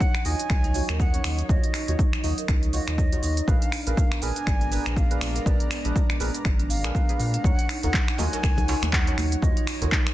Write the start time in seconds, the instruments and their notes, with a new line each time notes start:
Already playing: analog synth pad F#3 D#4 C#5 D#5, flute F#5
0.01 marimba C#5, kick, shaker
0.15 finger snap, shaker
0.25 analog synth bass D#2, synth stab D#4 F4 F#4 D#5, marimba D#4, flute G#5, open hi-hat, shaker
0.39 closed hi-hat, shaker
0.50 analog synth bass C#2, finger snap, kick, shaker
0.64 marimba D#4, closed hi-hat, shaker
0.74 synth stab D#4 F4 F#4 C#5, open hi-hat, shaker
0.89 analog synth bass D#2, marimba A#4, finger snap, closed hi-hat, shaker
1.00 marimba D#4, flute F#5, kick, shaker
1.14 synth stab C#4 D#4 F#4 C#5, closed hi-hat, shaker
1.24 analog synth bass D#2, finger snap, open hi-hat, shaker
1.39 marimba D#4, closed hi-hat, shaker
1.43 flute F#5
1.49 analog synth bass D#2, synth stab D#4 F4 F#4 C#5, marimba C#5, flute D#5, kick, shaker
1.64 closed hi-hat, shaker
1.74 marimba D#4, finger snap, open hi-hat, shaker
1.88 analog synth bass D#2, synth stab D#4 F4 F#4 C#5, closed hi-hat, shaker
1.99 kick, shaker
2.13 marimba D#4, finger snap, shaker
2.24 analog synth bass D#2, synth stab D#4 F4 F#4 D#5, open hi-hat, shaker
2.38 marimba A#4, closed hi-hat, shaker
2.48 analog synth bass C#2, marimba D#4, finger snap, kick, shaker
2.63 closed hi-hat, shaker
2.73 synth stab D#4 F4 F#4 C#5, flute D#5, open hi-hat, shaker
2.88 analog synth bass D#2, marimba D#4, finger snap, closed hi-hat, shaker
2.98 marimba C#5, kick, shaker
3.12 synth stab D#4 F4 F#4 C#5, closed hi-hat, shaker
3.23 analog synth bass D#2, marimba D#4, open hi-hat, shaker
3.37 closed hi-hat, shaker
3.47 analog synth bass A#1, analog synth pad G#3 B3 D5 A#5, synth stab D4 G#4 A#4 B4, flute F5, kick, shaker
3.62 marimba D4, closed hi-hat, shaker
3.72 finger snap, open hi-hat, shaker
3.87 analog synth bass A#1, synth stab D4 G#4 A#4 B4, marimba A#4, flute F5, closed hi-hat, shaker
3.97 marimba D4, kick, shaker
4.12 finger snap, shaker
4.22 analog synth bass A#1, synth stab D4 G#4 A#4 B4, flute G#5, open hi-hat, shaker
4.36 marimba D4, closed hi-hat, shaker
4.47 analog synth bass G#1, marimba D5, finger snap, kick, shaker
4.61 closed hi-hat, shaker
4.72 marimba D4, synth stab D4 G#4 A#4 B4, open hi-hat, shaker
4.86 analog synth bass A#1, finger snap, closed hi-hat, shaker
4.97 flute F5, kick, shaker
5.11 synth stab D4 G#4 A#4 B4, marimba D4, closed hi-hat, shaker
5.21 analog synth bass A#1, finger snap, open hi-hat, shaker
5.36 marimba A#4, closed hi-hat, shaker
5.46 analog synth bass A#1, synth stab D4 G#4 A#4 B4, marimba D4, flute D5, kick, shaker
5.60 closed hi-hat, shaker
5.71 finger snap, open hi-hat, shaker
5.85 analog synth bass A#1, synth stab D4 G#4 A#4 B4, marimba D4, closed hi-hat, shaker
5.96 marimba D5, kick, shaker
6.10 finger snap, shaker
6.20 analog synth bass A#1, synth stab D4 G#4 A#4 B4, marimba D4, open hi-hat, shaker
6.34 closed hi-hat, shaker
6.45 analog synth bass G#1, finger snap, kick, shaker
6.60 marimba D4, closed hi-hat, shaker
6.70 flute F5, open hi-hat, shaker
6.84 analog synth bass A#1, synth stab D4 G#4 A#4 B4, marimba A#4, finger snap, closed hi-hat, shaker
6.95 marimba D4, kick, shaker
7.09 synth stab D4 G#4 A#4 B4, closed hi-hat, shaker
7.19 analog synth bass A#2, open hi-hat, shaker
7.34 marimba D4, closed hi-hat, shaker
7.44 analog synth bass D#2, analog synth pad F#3 D#4 C#5 F#5, synth stab C#4 D#4 F#4 C#5, marimba C#5, flute F#5, kick, high conga, shaker
7.59 closed hi-hat, shaker
7.69 marimba D#4, finger snap, open hi-hat, shaker
7.83 analog synth bass D#2, synth stab D#4 F4 F#4 C#5, flute F#5, closed hi-hat, djembe tone, djembe bass, shaker
7.94 kick, clap, low conga, shaker
8.08 marimba D#4, finger snap, shaker
8.18 analog synth bass D#2, synth stab D#4 F4 F#4 D#5, flute G#5, open hi-hat, djembe slap, djembe tone, high conga, low conga, shaker
8.33 marimba A#4, closed hi-hat, djembe slap, shaker
8.43 analog synth bass C#2, marimba D#4, finger snap, kick, djembe tone, djembe bass, shaker
8.58 closed hi-hat, low conga, shaker
8.68 synth stab D#4 F4 F#4 C#5, open hi-hat, djembe slap, shaker
8.82 analog synth bass D#2, marimba D#4, finger snap, closed hi-hat, djembe tone, high conga, shaker
8.93 marimba C#5, flute F#5, kick, clap, shaker
9.07 synth stab C#4 D#4 F#4 C#5, closed hi-hat, shaker
9.17 analog synth bass D#2, marimba D#4, finger snap, open hi-hat, high conga, shaker
9.32 closed hi-hat, shaker
9.42 analog synth bass D#2, synth stab D#4 F4 F#4 C#5, flute D#5, kick, high conga, shaker
9.57 marimba D#4, closed hi-hat, shaker
9.67 finger snap, open hi-hat, shaker
9.82 analog synth bass D#2, synth stab D#4 F4 F#4 C#5, marimba A#4, closed hi-hat, djembe tone, djembe bass, shaker
9.92 marimba D#4, kick, clap, shaker
10.07 finger snap, shaker